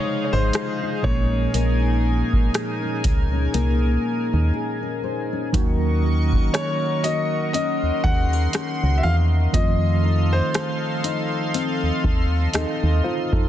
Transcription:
0.00 1.00 C3 medium
0.00 0.99 C#3 medium
0.00 1.00 F3 medium
0.00 1.00 G#3 medium
0.00 1.03 G#3 medium
0.00 0.32 D#4 medium
0.00 1.04 D#4 medium
0.00 5.50 D#4 medium
0.00 0.53 F4 medium
0.00 5.50 G#4 medium
0.00 1.36 C5 medium
0.00 0.23 C#5 medium
0.00 1.01 D#5 medium
0.00 1.00 F5 medium
0.24 0.33 C#5 medium
0.33 0.51 G#1 medium
0.33 0.82 D#4 medium
0.33 1.06 C5 loud
0.53 2.53 F4 medium
0.53 cross-stick loud
0.53 closed hi-hat medium
0.83 1.16 D#4 medium
1.02 1.48 A#1 loud
1.02 4.99 A#2 medium
1.02 5.00 F3 medium
1.02 5.00 G#3 medium
1.02 1.53 A#3 medium
1.02 5.00 A#3 medium
1.02 5.01 C#4 medium
1.02 5.50 A#4 medium
1.02 4.50 C#5 medium
1.02 5.50 G#5 medium
1.02 kick loud
1.33 1.82 C#4 medium
1.54 2.23 A#1 loud
1.54 3.54 A#3 medium
1.54 closed hi-hat medium
1.83 2.32 C#4 medium
2.33 2.83 C#4 medium
2.33 kick medium
2.54 4.53 G#4 medium
2.54 cross-stick loud
2.54 closed hi-hat medium
2.83 3.32 C#4 medium
3.04 3.48 C#2 medium
3.04 kick medium
3.04 closed hi-hat medium
3.33 3.82 C#4 medium
3.54 3.98 C2 medium
3.54 7.04 A#3 medium
3.54 closed hi-hat medium
3.83 4.33 C#4 medium
4.33 4.52 D#2 medium
4.33 4.82 C#4 medium
4.54 5.66 G#4 medium
4.83 5.32 C#4 medium
5.04 5.65 C5 medium
5.33 7.54 C#4 medium
5.52 6.42 D#2 loud
5.52 9.49 D#3 medium
5.52 9.54 D#3 medium
5.52 9.50 F#3 medium
5.52 9.50 A#3 medium
5.52 9.50 C#4 medium
5.52 9.50 F#4 medium
5.52 9.51 F#4 medium
5.52 9.50 A#4 medium
5.52 9.50 D#5 medium
5.52 7.52 C#6 medium
5.52 kick loud
5.52 closed hi-hat medium
6.04 7.03 F#4 medium
6.33 kick medium
6.54 8.04 A#4 medium
6.54 7.05 C#5 medium
6.54 cross-stick loud
6.54 closed hi-hat medium
7.04 9.03 F#4 medium
7.04 7.52 D#5 medium
7.04 closed hi-hat medium
7.53 8.53 C#4 medium
7.53 8.00 D#5 medium
7.53 9.52 C6 loud
7.53 closed hi-hat medium
7.83 7.92 D#2 soft
8.04 8.48 D#2 medium
8.04 8.33 G#4 medium
8.04 9.01 F#5 loud
8.04 kick medium
8.33 9.66 A#4 medium
8.53 9.66 C#4 medium
8.53 cross-stick loud
8.53 closed hi-hat medium
8.83 9.02 C#2 medium
8.98 9.04 E5 medium
9.03 9.48 E2 medium
9.03 9.66 F#4 medium
9.03 9.15 F5 loud
9.53 10.42 F2 loud
9.53 13.49 D#3 medium
9.53 13.49 F3 medium
9.53 13.49 A3 medium
9.53 13.49 C4 medium
9.53 12.51 F4 medium
9.53 13.49 A4 medium
9.53 10.35 D#5 medium
9.53 13.49 D#5 medium
9.53 13.49 F5 medium
9.53 13.49 C6 medium
9.53 kick loud
9.53 closed hi-hat medium
10.04 11.04 D#4 medium
10.33 12.29 C5 medium
10.54 12.03 A4 medium
10.54 cross-stick loud
10.54 closed hi-hat medium
11.04 13.04 D#4 medium
11.04 closed hi-hat medium
11.54 12.53 C4 medium
11.54 closed hi-hat medium
11.83 11.92 D#2 soft
12.04 12.48 D#2 medium
12.04 13.49 A4 medium
12.04 kick medium
12.54 12.66 D#2 soft
12.54 13.49 C4 medium
12.54 13.02 D#4 medium
12.54 13.02 A4 medium
12.54 13.01 D#5 medium
12.54 cross-stick loud
12.54 closed hi-hat medium
12.83 13.02 D#2 medium
13.04 13.49 D#4 medium
13.04 13.32 F4 medium
13.04 13.32 C5 medium
13.04 13.49 F5 medium
13.33 13.49 F2 medium
13.33 13.49 D#4 medium
13.33 13.49 A4 medium
13.33 kick medium

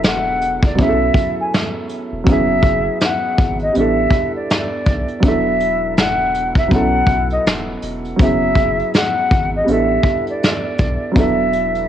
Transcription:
0.00 0.80 E1 loud
0.00 0.74 F#3 medium
0.00 0.75 B3 medium
0.00 0.76 D4 medium
0.00 0.77 E4 medium
0.00 0.81 A4 medium
0.00 closed hi-hat medium
0.04 0.61 F#5 medium
0.04 snare loud
0.41 closed hi-hat medium
0.62 0.79 D5 medium
0.62 kick loud
0.62 closed hi-hat soft
0.75 1.10 B1 loud
0.75 2.22 F#3 medium
0.75 2.23 B3 medium
0.75 2.24 C#4 medium
0.75 kick medium
0.75 closed hi-hat medium
0.81 2.25 E4 medium
0.81 0.88 G#4 medium
0.81 1.35 E5 medium
0.89 2.29 A4 medium
1.14 kick loud
1.14 closed hi-hat medium
1.40 1.53 G#5 medium
1.53 snare loud
1.53 closed hi-hat medium
1.89 closed hi-hat medium
2.12 2.28 E1 loud
2.24 2.89 F#1 loud
2.24 3.71 F#3 medium
2.24 3.72 B3 medium
2.24 3.73 C#4 medium
2.24 kick loud
2.24 closed hi-hat medium
2.29 3.73 E4 medium
2.29 3.74 G#4 medium
2.29 2.99 E5 loud
2.63 kick medium
2.63 closed hi-hat medium
3.00 3.58 F#5 loud
3.00 snare loud
3.00 closed hi-hat medium
3.38 3.69 G#1 medium
3.38 kick loud
3.38 closed hi-hat medium
3.59 3.75 D#5 medium
3.59 closed hi-hat soft
3.73 4.07 A1 loud
3.73 5.19 G3 medium
3.73 5.20 B3 medium
3.73 5.21 D4 medium
3.73 closed hi-hat medium
3.77 5.22 E4 medium
3.77 5.23 A4 medium
3.77 4.31 E5 medium
4.11 kick medium
4.11 closed hi-hat medium
4.35 5.27 D5 medium
4.50 snare loud
4.50 closed hi-hat medium
4.86 5.05 B1 medium
4.86 kick medium
4.86 closed hi-hat medium
5.08 closed hi-hat soft
5.20 6.68 E1 loud
5.20 6.67 F#3 medium
5.20 6.68 B3 medium
5.20 6.69 D4 medium
5.20 kick loud
5.20 closed hi-hat loud
5.25 6.70 E4 medium
5.25 6.71 A4 medium
5.25 5.94 E5 loud
5.60 closed hi-hat medium
5.97 6.53 F#5 medium
5.97 snare loud
5.97 closed hi-hat medium
6.35 closed hi-hat medium
6.55 6.74 E5 medium
6.55 kick loud
6.55 closed hi-hat soft
6.68 7.03 B1 loud
6.68 8.15 F#3 medium
6.68 8.16 B3 medium
6.68 8.17 C#4 medium
6.68 kick medium
6.68 closed hi-hat medium
6.73 8.18 E4 medium
6.73 8.19 A4 medium
6.73 7.27 F#5 medium
7.07 7.39 B1 medium
7.07 kick medium
7.07 closed hi-hat medium
7.30 7.45 D#5 medium
7.30 closed hi-hat soft
7.45 7.76 D#1 medium
7.45 snare loud
7.45 closed hi-hat medium
7.82 8.13 E1 medium
7.82 closed hi-hat medium
8.05 closed hi-hat soft
8.17 8.82 F#1 loud
8.17 9.63 F#3 medium
8.17 9.64 B3 medium
8.17 9.65 C#4 medium
8.17 kick loud
8.17 closed hi-hat medium
8.22 9.66 E4 medium
8.22 9.67 G#4 medium
8.22 8.91 E5 loud
8.55 kick medium
8.55 closed hi-hat medium
8.79 closed hi-hat soft
8.94 9.50 F#5 medium
8.94 snare loud
8.94 closed hi-hat medium
9.31 9.62 G#1 medium
9.31 kick loud
9.31 closed hi-hat medium
9.56 9.68 D#5 medium
9.64 9.99 A1 loud
9.64 11.11 G3 medium
9.64 11.12 B3 medium
9.64 11.13 D4 medium
9.64 closed hi-hat medium
9.69 11.14 E4 medium
9.69 11.15 A4 medium
9.69 10.25 E5 medium
10.03 kick medium
10.03 closed hi-hat medium
10.27 11.13 D5 medium
10.27 closed hi-hat soft
10.43 snare loud
10.43 closed hi-hat medium
10.78 10.97 B1 medium
10.78 kick medium
10.78 closed hi-hat medium
11.12 11.88 F#3 medium
11.12 11.88 B3 medium
11.12 11.88 D4 medium
11.16 11.88 E1 loud
11.16 11.88 E4 medium
11.16 11.88 A4 medium
11.16 11.87 E5 medium
11.16 kick loud
11.16 closed hi-hat medium
11.53 closed hi-hat medium
11.75 closed hi-hat soft

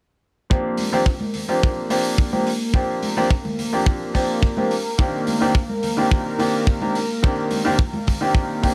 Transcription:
0.50 0.89 F3 medium
0.50 0.89 A#3 medium
0.50 8.74 A#3 medium
0.50 0.89 C4 medium
0.50 0.89 D4 medium
0.50 0.90 G4 medium
0.50 8.74 A#4 medium
0.50 kick loud
0.77 open hi-hat medium
0.77 high conga medium
0.92 1.02 F3 medium
0.92 1.02 A#3 medium
0.92 1.02 C4 medium
0.92 1.02 D4 medium
0.92 1.03 G4 medium
0.92 low conga medium
1.06 kick loud
1.21 high conga medium
1.34 open hi-hat medium
1.34 low conga medium
1.48 1.87 F3 medium
1.48 1.87 A#3 medium
1.48 1.87 C4 medium
1.48 1.87 D4 medium
1.48 1.87 G4 medium
1.63 kick loud
1.90 2.29 F3 medium
1.90 2.29 A#3 medium
1.90 2.29 C4 medium
1.90 2.30 D4 medium
1.90 2.30 G4 medium
1.90 open hi-hat loud
2.18 kick loud
2.32 2.48 F3 medium
2.32 2.48 A#3 medium
2.32 2.48 C4 medium
2.32 2.48 D4 medium
2.32 2.48 G4 medium
2.32 high conga medium
2.47 open hi-hat medium
2.74 3.13 F3 medium
2.74 3.13 A#3 medium
2.74 3.13 C4 medium
2.74 3.14 D4 medium
2.74 3.14 G4 medium
2.74 kick loud
3.03 open hi-hat medium
3.03 high conga medium
3.17 3.26 F3 medium
3.17 3.27 A#3 medium
3.17 3.27 C4 medium
3.17 3.27 D4 medium
3.17 3.27 G4 loud
3.17 low conga medium
3.31 kick loud
3.45 high conga medium
3.45 low conga medium
3.59 open hi-hat medium
3.59 low conga medium
3.73 4.11 F3 medium
3.73 4.11 A#3 medium
3.73 4.11 C4 medium
3.73 4.12 D4 medium
3.73 4.12 G4 medium
3.86 kick loud
4.14 4.53 F3 medium
4.14 4.54 A#3 medium
4.14 4.54 C4 medium
4.14 4.54 D4 medium
4.14 4.54 G4 medium
4.14 kick medium
4.14 open hi-hat loud
4.43 kick loud
4.57 4.72 F3 medium
4.57 4.73 A#3 medium
4.57 4.73 C4 medium
4.57 4.73 D4 medium
4.57 4.73 G4 medium
4.57 high conga medium
4.71 open hi-hat medium
4.98 5.38 D#3 medium
4.98 5.38 A#3 medium
4.98 5.38 C4 medium
4.98 5.38 D4 medium
4.98 5.38 G4 medium
4.98 kick loud
5.27 open hi-hat medium
5.27 high conga medium
5.41 5.51 D#3 medium
5.41 5.51 A#3 medium
5.41 5.51 C4 medium
5.41 5.51 D4 medium
5.41 5.51 G4 loud
5.41 low conga medium
5.55 kick loud
5.69 high conga medium
5.83 open hi-hat medium
5.83 low conga medium
5.97 6.36 D#3 medium
5.97 6.36 A#3 medium
5.97 6.36 C4 medium
5.97 6.36 D4 medium
5.97 6.36 G4 medium
6.11 kick loud
6.39 6.78 D#3 medium
6.39 6.78 A#3 medium
6.39 6.78 C4 medium
6.39 6.78 D4 medium
6.39 6.78 G4 medium
6.39 open hi-hat loud
6.67 kick loud
6.81 6.97 D#3 medium
6.81 6.97 A#3 medium
6.81 6.97 C4 medium
6.81 6.97 D4 medium
6.81 6.97 G4 medium
6.81 high conga medium
6.95 open hi-hat medium
7.23 7.62 D#3 medium
7.23 7.62 A#3 medium
7.23 7.62 C4 medium
7.23 7.62 D4 medium
7.23 7.62 G4 medium
7.23 kick loud
7.51 open hi-hat loud
7.51 high conga medium
7.65 7.75 D#3 medium
7.65 7.75 A#3 medium
7.65 7.75 C4 medium
7.65 7.75 D4 medium
7.65 7.75 G4 loud
7.65 low conga medium
7.79 kick loud
7.93 high conga medium
7.93 low conga medium
8.06 kick medium
8.06 open hi-hat medium
8.06 low conga medium
8.21 8.60 D#3 medium
8.21 8.60 A#3 medium
8.21 8.60 C4 medium
8.21 8.60 D4 medium
8.21 8.60 G4 medium
8.35 kick loud
8.63 8.73 D#3 medium
8.63 8.73 A#3 medium
8.63 8.73 C4 medium
8.63 8.73 D4 medium
8.63 8.74 G4 medium
8.63 kick medium
8.63 open hi-hat loud

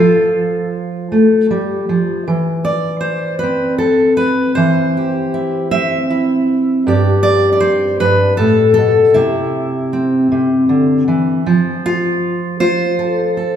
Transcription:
0.00 1.11 F3 medium
0.00 2.26 F4 medium
0.00 0.66 A4 medium
1.12 1.50 A3 soft
1.50 1.88 G3 medium
1.89 2.27 F3 medium
2.28 4.52 E3 medium
2.65 3.80 D5 medium
3.01 3.38 C5 medium
3.39 3.78 B4 medium
3.43 5.71 C4 soft
3.78 4.16 A4 medium
4.17 4.55 B4 medium
4.55 6.82 E3 medium
4.55 6.47 C5 medium
4.97 5.71 G4 soft
5.34 6.09 E4 soft
5.71 6.92 C4 medium
5.71 6.86 E5 medium
6.10 6.82 E4 soft
6.87 8.00 G2 medium
6.87 9.12 G4 medium
6.87 7.22 D5 medium
7.23 7.51 D5 medium
7.53 8.38 D5 medium
7.60 8.00 C5 medium
8.00 8.38 G2 medium
8.00 8.37 B4 loud
8.37 8.77 A2 medium
8.37 8.73 A4 medium
8.74 9.14 A4 medium
8.78 9.16 B2 medium
9.14 10.30 C3 medium
9.14 11.44 E4 medium
9.93 11.41 C4 soft
10.32 10.69 C3 soft
10.69 11.07 D3 medium
11.08 11.46 E3 medium
11.46 13.56 F3 medium
11.86 12.59 F4 medium
12.60 13.56 F4 medium
12.60 13.56 C5 loud
12.99 13.36 A4 soft
13.37 13.56 A4 soft

